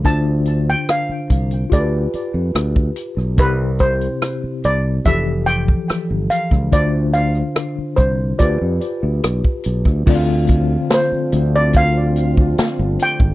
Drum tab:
CC |----------------|----------------|----------------|x---------------|
HH |x-x-x-xxx-x-x-x-|x-xxx-x-x-x-x-x-|x-x-x-x-x-x-x-x-|--x-x-x-x-x-x-x-|
SD |----r-------r--r|----r-------r--r|---rr-------r--r|----o-------o---|
BD |o-----o-o----o--|o-o-----o--o---o|o-----o-o----o-o|o-o-----o--o---o|